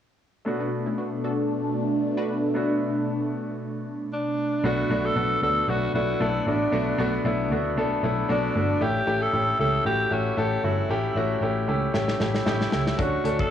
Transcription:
0.45 B2 A3 B3 D4 F#4
0.60 B3 D4 F#4
0.86 A3 C#4 E4
0.98 B3 D4 F#4
1.24 D4 F#4 A4
2.17 D4 F#4 B4
2.54 A3 B3 D4 F#4
4.12 D4
4.63 B1 A3 B3 D4 F#4
4.89 B1 A3 B3 D4 F#4
5.05 A4
5.15 B1 A3 B3 D4 F#4
5.42 D2 A3 B3 D4 F#4 A4
5.68 B1 A3 B3 D4 F#4
5.94 B1 A3 B3 D4 E4 F#4
6.20 B1 A3 B3 D4 E4 A4
6.46 A1 A3 B3 D4 F#4
6.72 B1 A3 B3 D4 F#4
6.98 B1 A3 B3 D4 F#4
7.25 B1 A3 B3 D4 E4
7.51 D2 A3 B3 D4 F#4
7.77 B1 A3 B3 D4 A4
8.03 B1 A3 B3 D4 E4
8.28 B1 A3 B3 D4 F#4
8.55 G1 A3 B3 D4 F#4
8.80 A1 A3 C#4 E4 G4
9.06 A1 A3 C#4 E4 G4
9.22 A4
9.32 A1 A3 C#4 E4 G4
9.59 C#2 A3 C#4 E4 G4 A4
9.85 A1 A3 C#4 E4 F#4 G4
10.10 A1 A3 C#4 E4 F#4 G4
10.37 A1 A3 C#4 E4 G4 A4
10.63 G1 A3 C#4 E4 F#4
10.89 A1 A3 C#4 E4 G4
11.15 A1 A3 C#4 E4 F#4
11.41 A1 A3 C#4 E4 G4
11.68 C#2 A3 C#4 E4 G4
11.94 A1 A3 C#4 E4 G4, snare
12.08 snare
12.20 A1 A3 C#4 E4 G4, snare
12.34 snare
12.45 A1 A3 C#4 E4 G4, snare
12.61 snare
12.71 C#2 A3 C#4 E4 G4, snare
12.87 snare
12.98 D2 A3 C#4 D4 F#4, kick, closed hi-hat
13.24 D2 A3 C#4 D4 A4, closed hi-hat
13.39 A4, kick

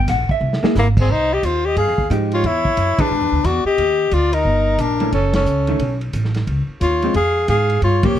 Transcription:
0.08 A#1 F#5, kick, snare, hi-hat pedal, ride
0.29 E5, muted upright bass stroke, kick
0.41 C2
0.53 snare
0.63 A#3 E4 G#4, muted upright bass stroke, snare
0.75 G#1 A#3 E4, snare, hi-hat pedal
0.97 C4 G#4, kick, crash
1.09 C2 D#4 C5, kick
1.33 G4 D#5
1.43 D#2 F4 C5, kick, hi-hat pedal, ride
1.65 G4 D#5
1.76 G2 G#4 F5, kick, ride
1.87 F2
1.98 D#2, kick
2.10 G#2 F3 G#3 D#4 G4, kick, hi-hat pedal, ride
2.32 F4 C#5, ride
2.44 E2 E4 C#5, kick, ride
2.65 kick
2.77 F#2, kick, hi-hat pedal, ride
2.98 E3 D4 G#4 B4 C#5, muted upright bass stroke, kick, ride
3.11 G#2
3.21 E2
3.32 D2
3.44 E2 F#4 D5, kick, hi-hat pedal, ride
3.65 G4 D#5, muted upright bass stroke
3.78 D#2, kick, ride
4.11 D2 F4 D5, kick, hi-hat pedal, ride
4.33 D#4 A#4, ride
4.45 G1, kick
4.78 A#1 D4 A#4, kick, hi-hat pedal, ride
5.00 E3 A3 C#4, ride
5.12 F#1 C#4 A4, kick, ride
5.33 C#4 A4, snare, ride
5.45 C#2, hi-hat pedal
5.67 D#3 A3 C#4, ride
5.79 B1, kick, ride
6.01 ride
6.13 A1, kick, hi-hat pedal, ride
6.25 snare
6.34 snare, ride
6.47 C#2, kick, ride
6.68 muted upright bass stroke
6.81 D#2 F4 C#5, kick, hi-hat pedal, ride
7.02 F3 G#3 C4, ride
7.14 F2 G#4 F5, kick, ride
7.48 G#2 G#4 F5, kick, hi-hat pedal, ride
7.69 ride
7.82 G2 F4 C#5, kick, ride
8.03 F3 A#3 C#4 G4 C#5, kick, ride
8.14 A#2, hi-hat pedal

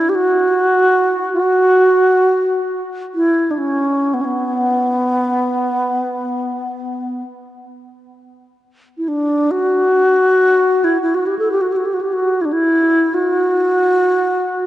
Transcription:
Already playing: E4
0.09 G4
0.15 F#4
1.33 F#4
3.15 E4
3.51 D4
3.58 C#4
4.14 B3
4.21 B3 C#4
8.98 E4
9.08 D4
9.51 F#4
10.84 E4
11.02 E4
11.15 F#4
11.27 G4
11.39 A4
11.51 G4
11.61 F#4
11.72 G4
11.76 F#4
11.85 G4
11.94 F#4
12.01 G4
12.13 F#4
12.41 D4 E4
12.53 E4
13.14 F#4

